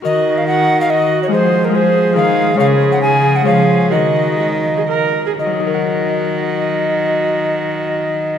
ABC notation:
X:1
M:3/4
L:1/16
Q:1/4=129
K:Ebm
V:1 name="Recorder"
e3 f g3 f e3 d | =c3 B c4 f4 | f3 g a3 g f4 | e8- e2 z2 |
e12- | e12 |]
V:2 name="Viola"
G4 G4 G4 | A4 A4 A4 | A4 A4 A4 | G4 G3 A B3 A |
G12- | G12 |]
V:3 name="Harp"
[GB]12 | [A,FA]4 [A,FA]4 [A,FA]4 | [A,Fd]8 [A,Fd]4 | [GB]12- |
[GB]12- | [GB]12 |]
V:4 name="Harp" clef=bass
E,12 | F,8 E,4 | D,8 F,4 | E,12 |
[E,G,EGBg]12- | [E,G,EGBg]12 |]
V:5 name="Cello" clef=bass
E,12 | F,8 E,4 | D,8 F,4 | E,8- E,2 z2 |
E,12- | E,12 |]